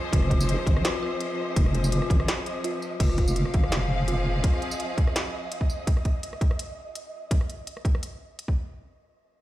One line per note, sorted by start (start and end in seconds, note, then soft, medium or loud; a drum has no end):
0.00 2.99 F3 medium
0.00 3.00 C4 medium
0.00 0.13 F4 loud
0.00 3.00 G#4 medium
0.00 3.02 C5 medium
0.00 2.99 D#5 medium
0.13 0.57 F1 loud
0.13 0.83 F4 medium
0.13 kick loud
0.13 closed hi-hat medium
0.22 cross-stick soft
0.31 kick medium
0.31 closed hi-hat soft
0.40 tambourine medium
0.49 closed hi-hat medium
0.59 cross-stick soft
0.67 0.83 G#1 medium
0.67 kick loud
0.67 closed hi-hat soft
0.77 cross-stick medium
0.85 1.01 F4 medium
0.85 snare loud
0.85 closed hi-hat medium
1.02 1.19 F4 loud
1.20 1.91 F4 medium
1.20 closed hi-hat medium
1.56 2.00 F1 loud
1.56 kick loud
1.56 closed hi-hat medium
1.66 cross-stick soft
1.75 closed hi-hat soft
1.84 tambourine medium
1.92 2.63 F4 medium
1.92 closed hi-hat medium
2.02 cross-stick soft
2.10 2.28 G#1 medium
2.10 kick loud
2.10 closed hi-hat soft
2.20 cross-stick medium
2.28 snare loud
2.28 closed hi-hat medium
2.46 closed hi-hat soft
2.64 2.81 F4 medium
2.64 closed hi-hat medium
2.82 tambourine soft
3.00 3.44 F1 loud
3.00 5.88 F3 medium
3.00 3.17 F4 medium
3.00 7.32 D#5 medium
3.00 kick loud
3.00 closed hi-hat medium
3.00 crash medium
3.09 cross-stick soft
3.16 3.35 F4 loud
3.16 5.88 F5 medium
3.16 kick medium
3.16 closed hi-hat soft
3.24 5.88 C4 medium
3.24 tambourine medium
3.36 4.06 F4 medium
3.36 closed hi-hat medium
3.45 5.88 G#4 medium
3.45 cross-stick soft
3.54 3.71 G#1 medium
3.54 kick loud
3.54 closed hi-hat soft
3.64 cross-stick medium
3.71 4.42 F1 loud
3.71 snare loud
3.71 closed hi-hat medium
4.08 4.78 F4 medium
4.08 closed hi-hat medium
4.44 kick loud
4.44 closed hi-hat medium
4.54 cross-stick soft
4.62 closed hi-hat soft
4.71 tambourine medium
4.80 closed hi-hat medium
4.98 kick loud
4.98 closed hi-hat soft
5.07 cross-stick medium
5.16 snare loud
5.16 closed hi-hat medium
5.52 closed hi-hat medium
5.61 kick medium
5.70 tambourine soft
5.87 kick loud
5.87 closed hi-hat medium
5.97 cross-stick soft
6.05 kick medium
6.05 closed hi-hat soft
6.23 closed hi-hat medium
6.33 cross-stick soft
6.41 kick loud
6.41 closed hi-hat soft
6.51 cross-stick soft
6.59 closed hi-hat medium
6.95 closed hi-hat medium
7.31 kick loud
7.31 closed hi-hat medium
7.41 cross-stick soft
7.50 closed hi-hat soft
7.67 closed hi-hat medium
7.77 cross-stick soft
7.85 kick loud
7.85 closed hi-hat soft
7.95 cross-stick soft
8.03 closed hi-hat medium
8.39 closed hi-hat medium
8.48 kick medium